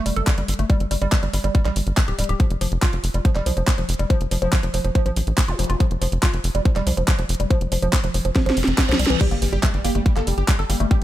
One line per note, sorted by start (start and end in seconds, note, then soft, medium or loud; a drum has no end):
0.06 0.12 F1 loud
0.06 0.11 G3 medium
0.06 open hi-hat loud
0.16 0.22 G1 medium
0.16 0.22 A4 medium
0.16 closed hi-hat medium
0.27 0.32 G3 medium
0.27 kick loud
0.27 clap loud
0.27 closed hi-hat medium
0.38 0.44 G1 medium
0.38 0.43 G3 medium
0.38 closed hi-hat medium
0.48 0.54 G1 medium
0.48 open hi-hat loud
0.54 closed hi-hat medium
0.59 0.65 G1 medium
0.59 0.64 A3 medium
0.59 closed hi-hat medium
0.70 0.78 G3 loud
0.70 kick loud
0.70 closed hi-hat medium
0.80 0.86 G1 medium
0.80 closed hi-hat soft
0.91 0.97 G1 loud
0.91 0.96 G3 medium
0.91 open hi-hat loud
1.02 1.08 G1 medium
1.02 1.07 G3 loud
1.02 closed hi-hat soft
1.12 1.18 G3 medium
1.12 kick loud
1.12 clap loud
1.12 closed hi-hat soft
1.23 1.29 G1 medium
1.23 1.28 G3 medium
1.23 closed hi-hat soft
1.33 1.39 G1 loud
1.33 1.37 G3 medium
1.33 open hi-hat loud
1.44 1.50 G1 medium
1.44 1.49 G3 medium
1.44 closed hi-hat medium
1.55 1.63 G3 loud
1.55 kick loud
1.55 closed hi-hat medium
1.65 1.71 A#1 medium
1.65 1.69 G3 loud
1.65 clap soft
1.65 closed hi-hat soft
1.76 1.82 G1 loud
1.76 open hi-hat loud
1.87 1.93 G1 medium
1.87 closed hi-hat soft
1.97 kick loud
1.97 clap loud
1.97 open hi-hat medium
2.08 2.14 D1 medium
2.08 2.16 G4 medium
2.08 closed hi-hat soft
2.19 2.25 D1 loud
2.19 2.22 G3 medium
2.19 open hi-hat loud
2.24 closed hi-hat medium
2.29 2.35 D1 medium
2.29 2.35 G4 medium
2.29 closed hi-hat medium
2.40 2.45 F3 medium
2.40 kick loud
2.40 closed hi-hat medium
2.50 2.56 F1 medium
2.50 closed hi-hat medium
2.61 2.67 F1 loud
2.61 2.66 F3 medium
2.61 open hi-hat loud
2.72 2.78 F1 medium
2.72 closed hi-hat soft
2.82 2.86 F4 loud
2.82 kick loud
2.82 clap loud
2.82 closed hi-hat soft
2.93 2.99 F1 medium
2.93 closed hi-hat medium
3.04 3.10 F1 loud
3.04 open hi-hat loud
3.14 3.20 F1 medium
3.14 3.20 G3 medium
3.14 closed hi-hat medium
3.25 3.30 F3 medium
3.25 kick loud
3.25 closed hi-hat medium
3.36 3.42 F1 medium
3.36 3.41 G3 loud
3.36 clap soft
3.36 closed hi-hat medium
3.46 3.52 C2 loud
3.46 3.52 F3 medium
3.46 open hi-hat loud
3.57 3.63 F1 loud
3.57 3.62 F3 medium
3.57 closed hi-hat soft
3.67 3.73 F3 medium
3.67 kick loud
3.67 clap loud
3.67 closed hi-hat medium
3.78 3.84 F1 medium
3.78 3.84 F3 medium
3.78 closed hi-hat medium
3.89 3.95 F1 loud
3.89 open hi-hat loud
3.94 closed hi-hat medium
3.99 4.05 F1 loud
3.99 4.05 G3 medium
3.99 closed hi-hat medium
4.10 4.18 F3 loud
4.10 kick loud
4.10 closed hi-hat medium
4.21 4.27 F1 medium
4.21 closed hi-hat medium
4.31 4.37 F1 loud
4.31 4.37 F3 medium
4.31 open hi-hat loud
4.42 4.48 F1 medium
4.42 4.47 F3 loud
4.42 closed hi-hat soft
4.53 kick loud
4.53 clap loud
4.63 4.69 F1 medium
4.63 4.69 F3 medium
4.63 closed hi-hat medium
4.74 4.80 F1 loud
4.74 4.77 F3 medium
4.74 open hi-hat loud
4.85 4.91 F1 medium
4.85 4.90 F3 medium
4.85 closed hi-hat medium
4.95 5.03 F3 loud
4.95 kick loud
4.95 closed hi-hat medium
5.06 5.12 A1 medium
5.06 5.09 F3 loud
5.06 closed hi-hat medium
5.16 5.22 A1 loud
5.16 open hi-hat loud
5.27 5.33 A1 medium
5.27 closed hi-hat soft
5.38 kick loud
5.38 clap loud
5.38 open hi-hat medium
5.48 5.54 F1 medium
5.48 5.56 F4 medium
5.48 closed hi-hat medium
5.48 zap medium
5.59 5.65 F1 loud
5.59 5.62 F3 medium
5.59 open hi-hat loud
5.64 closed hi-hat medium
5.70 5.76 F1 loud
5.70 5.75 F4 medium
5.70 closed hi-hat medium
5.80 5.86 F3 medium
5.80 kick loud
5.80 closed hi-hat medium
5.91 5.97 F1 medium
5.91 closed hi-hat medium
6.02 6.08 F1 loud
6.02 6.07 F3 medium
6.02 open hi-hat loud
6.12 6.18 F1 medium
6.12 closed hi-hat medium
6.23 6.26 F4 loud
6.23 kick loud
6.23 clap loud
6.23 closed hi-hat soft
6.33 6.39 F1 medium
6.33 closed hi-hat medium
6.44 6.50 F1 loud
6.44 open hi-hat loud
6.55 6.61 F1 medium
6.55 6.60 G3 medium
6.55 closed hi-hat medium
6.65 6.71 F3 medium
6.65 kick loud
6.65 closed hi-hat medium
6.76 6.82 F1 medium
6.76 6.81 G3 loud
6.76 clap soft
6.76 closed hi-hat medium
6.87 6.93 C2 loud
6.87 6.92 F3 medium
6.87 open hi-hat loud
6.97 7.03 F1 medium
6.97 7.03 F3 medium
6.97 closed hi-hat medium
7.08 7.13 F3 medium
7.08 kick loud
7.08 clap loud
7.08 closed hi-hat medium
7.19 7.25 F1 medium
7.19 7.24 F3 medium
7.19 closed hi-hat medium
7.29 7.35 F1 loud
7.29 open hi-hat loud
7.35 closed hi-hat medium
7.40 7.46 F1 loud
7.40 7.45 G3 medium
7.40 closed hi-hat medium
7.50 7.58 F3 loud
7.50 kick loud
7.50 closed hi-hat medium
7.61 7.67 F1 medium
7.61 closed hi-hat medium
7.72 7.78 F1 medium
7.72 7.77 F3 medium
7.72 open hi-hat loud
7.82 7.88 F1 medium
7.82 7.88 F3 loud
7.82 closed hi-hat medium
7.93 7.98 F3 medium
7.93 kick loud
7.93 clap loud
7.93 closed hi-hat soft
8.04 8.10 F1 medium
8.04 8.09 F3 medium
8.04 closed hi-hat medium
8.14 8.20 F1 loud
8.14 8.18 F3 medium
8.14 open hi-hat loud
8.25 8.31 F1 medium
8.25 8.30 F3 medium
8.25 closed hi-hat medium
8.36 8.44 F3 loud
8.36 kick loud
8.36 snare medium
8.36 closed hi-hat medium
8.36 reverse cymbal medium
8.46 8.52 A1 medium
8.46 8.49 F3 loud
8.46 snare medium
8.46 closed hi-hat medium
8.57 8.63 F1 loud
8.57 open hi-hat loud
8.64 8.74 F1 medium
8.64 snare medium
8.64 closed hi-hat medium
8.78 kick loud
8.78 snare medium
8.78 clap loud
8.78 open hi-hat medium
8.89 8.95 C2 medium
8.89 8.94 F3 loud
8.89 snare loud
8.89 closed hi-hat medium
8.99 9.05 C2 loud
8.99 9.05 G3 medium
8.99 open hi-hat loud
9.05 snare loud
9.05 closed hi-hat medium
9.10 9.16 C2 loud
9.10 9.15 E3 loud
9.10 closed hi-hat medium
9.21 9.24 G3 medium
9.21 9.27 G4 loud
9.21 kick loud
9.21 closed hi-hat medium
9.21 crash loud
9.21 impact medium
9.31 9.37 G1 medium
9.31 9.38 G3 medium
9.31 9.37 A#3 medium
9.31 closed hi-hat soft
9.42 9.48 G1 loud
9.42 9.48 G3 medium
9.42 open hi-hat loud
9.53 9.59 G1 medium
9.53 9.58 G3 medium
9.53 9.59 G4 loud
9.53 closed hi-hat soft
9.63 9.70 G3 medium
9.63 9.66 A3 medium
9.63 kick loud
9.63 clap loud
9.63 closed hi-hat medium
9.74 9.80 G1 medium
9.74 9.80 G3 medium
9.74 closed hi-hat soft
9.85 9.91 G1 loud
9.85 9.90 A#3 medium
9.85 9.91 G4 loud
9.85 open hi-hat loud
9.95 10.01 G1 medium
9.95 10.01 G3 medium
9.95 10.01 A3 medium
9.95 closed hi-hat soft
10.06 10.12 G3 medium
10.06 kick loud
10.06 closed hi-hat medium
10.16 10.22 G1 medium
10.16 10.22 A#3 medium
10.16 10.23 A4 medium
10.16 clap soft
10.16 closed hi-hat soft
10.27 10.33 F1 loud
10.27 10.33 G3 medium
10.27 open hi-hat loud
10.38 10.44 G1 medium
10.38 10.44 G4 medium
10.38 closed hi-hat soft
10.48 10.55 G3 medium
10.48 kick loud
10.48 clap loud
10.48 closed hi-hat medium
10.59 10.65 G1 medium
10.59 10.65 A4 medium
10.59 10.64 A4 medium
10.59 closed hi-hat soft
10.70 10.76 G1 loud
10.70 10.76 G3 medium
10.70 10.75 A#3 medium
10.70 open hi-hat loud
10.80 10.86 G1 loud
10.80 10.87 G3 medium
10.80 10.86 A3 medium
10.80 closed hi-hat soft
10.91 10.94 G3 medium
10.91 10.97 G4 medium
10.91 kick loud
10.91 closed hi-hat medium